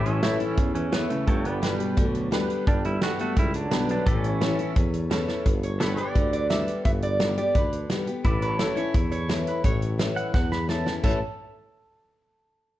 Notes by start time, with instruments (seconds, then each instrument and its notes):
Already playing: tuba A1, steel-string acoustic guitar A2, pedal steel guitar G4 B4 D5
0.06 pedal steel guitar E3 C#4, closed hi-hat
0.13 pedal steel guitar A4 C#5 E5
0.22 steel-string acoustic guitar E3 A3 C#4 E4, pedal steel guitar A3 E4, honky-tonk piano E4 A4 C#5, snare, closed hi-hat
0.40 pedal steel guitar E3 C#4, steel-string acoustic guitar C#4 E4, closed hi-hat
0.57 tuba E2, steel-string acoustic guitar E2, kick, closed hi-hat
0.75 pedal steel guitar E3 C#4, closed hi-hat
0.92 steel-string acoustic guitar E3 A3 C#4 E4, pedal steel guitar E3 B3, honky-tonk piano E4 A4 C#5, snare, closed hi-hat
1.10 pedal steel guitar C#3 A3, steel-string acoustic guitar C#4 E4, closed hi-hat
1.27 tuba G1, steel-string acoustic guitar G2, pedal steel guitar D3 A3 A4 C#5 G5, kick, closed hi-hat
1.45 pedal steel guitar D3 B3 D5, closed hi-hat
1.53 pedal steel guitar B4
1.62 pedal steel guitar B2 G3, steel-string acoustic guitar D3 G3 B3 G4, honky-tonk piano D4 G4 B4, snare, closed hi-hat
1.79 steel-string acoustic guitar B3 G4, closed hi-hat
1.97 tuba D2, steel-string acoustic guitar D3, kick, closed hi-hat
2.08 pedal steel guitar F#3
2.15 closed hi-hat
2.31 steel-string acoustic guitar D3 G3 B3 G4, honky-tonk piano D4 G4 B4, snare, closed hi-hat
2.50 closed hi-hat
2.67 tuba G1, steel-string acoustic guitar G2, pedal steel guitar G3 D4, kick, closed hi-hat
2.85 pedal steel guitar G3 E4, closed hi-hat
3.01 steel-string acoustic guitar D3 G3 B3 G4, pedal steel guitar B3 F#4, honky-tonk piano D4 G4 A4, snare, closed hi-hat
3.19 pedal steel guitar A3 F#4, steel-string acoustic guitar B3 G4, closed hi-hat
3.36 tuba C#2, steel-string acoustic guitar D3, pedal steel guitar G3 E4, kick, closed hi-hat
3.54 pedal steel guitar F#3 D4, closed hi-hat
3.71 tuba B1, steel-string acoustic guitar D3 G3 B3 G4, honky-tonk piano D4 G4 B4, snare, closed hi-hat
3.89 pedal steel guitar F#3 D4, closed hi-hat
4.06 tuba A1, steel-string acoustic guitar A2, pedal steel guitar E3 C#4 A4 D5 E5, kick, closed hi-hat
4.24 pedal steel guitar C#5, closed hi-hat
4.41 steel-string acoustic guitar E3 A3 C#4 E4, honky-tonk piano C#4 E4 A4, snare, closed hi-hat
4.58 steel-string acoustic guitar C#4 E4, closed hi-hat
4.76 tuba E2, steel-string acoustic guitar E2, kick, closed hi-hat
4.94 closed hi-hat
5.10 steel-string acoustic guitar E3 A3 C#4 E4, honky-tonk piano C#4 E4 A4, snare, closed hi-hat
5.28 snare
5.46 tuba G1, steel-string acoustic guitar G2, kick, closed hi-hat
5.63 resonator guitar played with a steel bar C#5, closed hi-hat
5.80 steel-string acoustic guitar D3 G3 B3 G4, pedal steel guitar A4 C#5 E5, resonator guitar played with a steel bar B4, snare, closed hi-hat
5.97 resonator guitar played with a steel bar D5, closed hi-hat
6.05 pedal steel guitar G4 B4 D5
6.15 tuba D2, steel-string acoustic guitar D3, kick, closed hi-hat
6.33 resonator guitar played with a steel bar D5, closed hi-hat
6.50 steel-string acoustic guitar D3 G3 B3 G4, resonator guitar played with a steel bar E5, snare, closed hi-hat
6.68 closed hi-hat
6.85 tuba G1, steel-string acoustic guitar G2, resonator guitar played with a steel bar E5, kick, closed hi-hat
7.02 resonator guitar played with a steel bar D5, closed hi-hat
7.20 steel-string acoustic guitar D3 G3 B3 G4, snare, closed hi-hat
7.37 steel-string acoustic guitar B3 G4, resonator guitar played with a steel bar D5, closed hi-hat
7.55 tuba D2, steel-string acoustic guitar D3, resonator guitar played with a steel bar B4, kick, closed hi-hat
7.73 closed hi-hat
7.90 steel-string acoustic guitar D3 G3 B3 G4, snare, closed hi-hat
8.07 steel-string acoustic guitar B3 G4, closed hi-hat
8.24 tuba A1, steel-string acoustic guitar A2, pedal steel guitar E4 B4 D5, kick, closed hi-hat
8.42 resonator guitar played with a steel bar B4, closed hi-hat
8.47 pedal steel guitar C#5
8.51 pedal steel guitar A4
8.59 steel-string acoustic guitar E3 A3 C#4 E4, resonator guitar played with a steel bar A4, snare, closed hi-hat
8.76 steel-string acoustic guitar C#4 E4, resonator guitar played with a steel bar C#5, closed hi-hat
8.94 steel-string acoustic guitar E2, tuba E2, kick, closed hi-hat
9.12 resonator guitar played with a steel bar C#5, closed hi-hat
9.28 steel-string acoustic guitar E3 A3 C#4 E4, snare, closed hi-hat
9.47 resonator guitar played with a steel bar B4, closed hi-hat
9.64 tuba A1, steel-string acoustic guitar A2, resonator guitar played with a steel bar C#5, kick, closed hi-hat
9.82 closed hi-hat
9.98 steel-string acoustic guitar E3 A3 C#4 E4, snare, closed hi-hat
10.16 pedal steel guitar F#5, closed hi-hat
10.34 steel-string acoustic guitar E2, tuba E2, pedal steel guitar F#5, kick, snare
10.52 pedal steel guitar B5, snare
10.68 steel-string acoustic guitar E3 A3 C#4 E4, pedal steel guitar A5, snare
10.86 steel-string acoustic guitar C#4 E4, snare
11.03 tuba A1, steel-string acoustic guitar A2 E3 A3 C#4 E4, resonator guitar played with a steel bar A4, pedal steel guitar A5, kick, crash